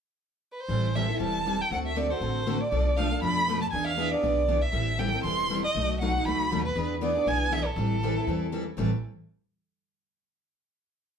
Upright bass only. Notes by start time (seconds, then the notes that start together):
0.69 A1
1.19 E1
1.70 D2
2.20 A1
2.72 B1
3.22 F2
3.72 E2
4.22 B1
4.73 A1
5.23 E1
5.75 B1
6.25 C#2
6.51 D#2
6.76 E2
7.26 B1
7.76 A1
8.27 E2
8.78 A1